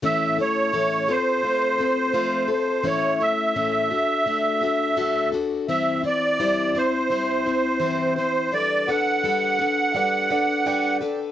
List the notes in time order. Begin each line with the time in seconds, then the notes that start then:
0.02 A2 E3 A3 C#4 E4 A4 E5
0.38 A3 C#4 E4 A4 C#5
0.73 A2 E3 A3 C#4 E4 A4
1.08 C4 F4 A4 C5
1.43 A3 C4 F4 A4
1.79 C4 F4 A4
2.13 F3 A3 C4 F4 A4
2.48 C4 F4 A4 C5
2.83 A2 E3 A3 C#4 E4 A4 C#5
3.20 A3 C#4 E4 A4 E5
3.55 A2 E3 A3 C#4 E4 A4
3.90 D4 F#4 A4
4.26 A3 D4 F#4 A4
4.61 D4 F#4 A4
4.96 D3 A3 D4 F#4 A4
5.32 D4 F#4 A4
5.68 E3 G3 C4 E4 C5 E5
6.02 C4 E4 C5
6.06 D5
6.39 E3 G3 C4 E4 C5
6.75 C4 E4 C5
7.10 G3 C4 E4 C5
7.45 C4 E4 C5
7.80 E3 G3 C4 E4 C5
8.16 C4 E4 C5
8.52 G3 D4 A4 B4 D5
8.88 D4 A4 B4 F#5
9.24 G3 D4 A4 B4
9.59 D4 A4 B4
9.92 G3 D4 D5 F5 F#5
9.96 A4 B4
10.30 D4 A4 B4 D5 F#5
10.66 G3 D4 A4 B4 D5 G5
11.01 D4 A4 B4